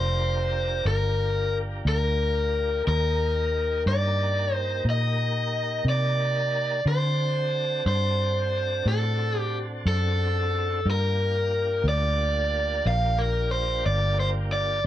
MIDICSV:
0, 0, Header, 1, 4, 480
1, 0, Start_track
1, 0, Key_signature, -2, "minor"
1, 0, Tempo, 665927
1, 2056, Time_signature, 12, 3, 24, 8
1, 10715, End_track
2, 0, Start_track
2, 0, Title_t, "Overdriven electric guitar"
2, 0, Program_c, 0, 29
2, 0, Note_on_c, 0, 72, 88
2, 623, Note_off_c, 0, 72, 0
2, 626, Note_on_c, 0, 70, 83
2, 1132, Note_off_c, 0, 70, 0
2, 1358, Note_on_c, 0, 70, 73
2, 2039, Note_off_c, 0, 70, 0
2, 2078, Note_on_c, 0, 70, 72
2, 2760, Note_off_c, 0, 70, 0
2, 2798, Note_on_c, 0, 74, 77
2, 3281, Note_off_c, 0, 74, 0
2, 3281, Note_on_c, 0, 72, 77
2, 3480, Note_off_c, 0, 72, 0
2, 3532, Note_on_c, 0, 75, 84
2, 4207, Note_off_c, 0, 75, 0
2, 4248, Note_on_c, 0, 74, 86
2, 4925, Note_off_c, 0, 74, 0
2, 4959, Note_on_c, 0, 72, 86
2, 5641, Note_off_c, 0, 72, 0
2, 5677, Note_on_c, 0, 72, 79
2, 6399, Note_off_c, 0, 72, 0
2, 6402, Note_on_c, 0, 69, 77
2, 6770, Note_off_c, 0, 69, 0
2, 6770, Note_on_c, 0, 67, 77
2, 6902, Note_off_c, 0, 67, 0
2, 7121, Note_on_c, 0, 69, 80
2, 7851, Note_off_c, 0, 69, 0
2, 7859, Note_on_c, 0, 70, 86
2, 8564, Note_off_c, 0, 70, 0
2, 8567, Note_on_c, 0, 74, 85
2, 9276, Note_off_c, 0, 74, 0
2, 9279, Note_on_c, 0, 77, 89
2, 9505, Note_on_c, 0, 70, 83
2, 9515, Note_off_c, 0, 77, 0
2, 9725, Note_off_c, 0, 70, 0
2, 9740, Note_on_c, 0, 72, 80
2, 9986, Note_off_c, 0, 72, 0
2, 9989, Note_on_c, 0, 74, 84
2, 10230, Note_off_c, 0, 74, 0
2, 10235, Note_on_c, 0, 72, 75
2, 10297, Note_off_c, 0, 72, 0
2, 10470, Note_on_c, 0, 74, 86
2, 10687, Note_off_c, 0, 74, 0
2, 10715, End_track
3, 0, Start_track
3, 0, Title_t, "Tonewheel organ"
3, 0, Program_c, 1, 16
3, 0, Note_on_c, 1, 62, 64
3, 0, Note_on_c, 1, 65, 63
3, 0, Note_on_c, 1, 67, 58
3, 0, Note_on_c, 1, 70, 64
3, 2034, Note_off_c, 1, 65, 0
3, 2035, Note_off_c, 1, 70, 0
3, 2036, Note_off_c, 1, 62, 0
3, 2039, Note_off_c, 1, 67, 0
3, 2043, Note_on_c, 1, 70, 61
3, 2048, Note_on_c, 1, 58, 58
3, 2050, Note_on_c, 1, 67, 63
3, 2056, Note_on_c, 1, 63, 62
3, 4904, Note_off_c, 1, 70, 0
3, 4906, Note_off_c, 1, 58, 0
3, 4908, Note_off_c, 1, 67, 0
3, 4911, Note_off_c, 1, 63, 0
3, 4936, Note_on_c, 1, 60, 60
3, 4943, Note_on_c, 1, 62, 61
3, 4944, Note_on_c, 1, 66, 59
3, 4946, Note_on_c, 1, 69, 62
3, 7789, Note_off_c, 1, 60, 0
3, 7792, Note_off_c, 1, 62, 0
3, 7793, Note_off_c, 1, 66, 0
3, 7794, Note_off_c, 1, 69, 0
3, 7822, Note_on_c, 1, 58, 67
3, 7825, Note_on_c, 1, 65, 69
3, 7826, Note_on_c, 1, 62, 68
3, 7826, Note_on_c, 1, 67, 71
3, 10669, Note_off_c, 1, 58, 0
3, 10671, Note_off_c, 1, 62, 0
3, 10671, Note_off_c, 1, 65, 0
3, 10671, Note_off_c, 1, 67, 0
3, 10694, Note_on_c, 1, 69, 67
3, 10715, Note_off_c, 1, 69, 0
3, 10715, End_track
4, 0, Start_track
4, 0, Title_t, "Fingered electric bass"
4, 0, Program_c, 2, 33
4, 0, Note_on_c, 2, 29, 82
4, 592, Note_off_c, 2, 29, 0
4, 614, Note_on_c, 2, 31, 72
4, 1314, Note_off_c, 2, 31, 0
4, 1334, Note_on_c, 2, 38, 88
4, 2034, Note_off_c, 2, 38, 0
4, 2070, Note_on_c, 2, 39, 80
4, 2763, Note_off_c, 2, 39, 0
4, 2784, Note_on_c, 2, 43, 77
4, 3480, Note_off_c, 2, 43, 0
4, 3495, Note_on_c, 2, 46, 82
4, 4196, Note_off_c, 2, 46, 0
4, 4215, Note_on_c, 2, 48, 78
4, 4916, Note_off_c, 2, 48, 0
4, 4942, Note_on_c, 2, 50, 79
4, 5640, Note_off_c, 2, 50, 0
4, 5665, Note_on_c, 2, 43, 85
4, 6361, Note_off_c, 2, 43, 0
4, 6384, Note_on_c, 2, 45, 81
4, 7080, Note_off_c, 2, 45, 0
4, 7104, Note_on_c, 2, 42, 90
4, 7800, Note_off_c, 2, 42, 0
4, 7825, Note_on_c, 2, 43, 86
4, 8520, Note_off_c, 2, 43, 0
4, 8533, Note_on_c, 2, 38, 78
4, 9234, Note_off_c, 2, 38, 0
4, 9266, Note_on_c, 2, 34, 83
4, 9960, Note_off_c, 2, 34, 0
4, 9988, Note_on_c, 2, 31, 83
4, 10681, Note_off_c, 2, 31, 0
4, 10715, End_track
0, 0, End_of_file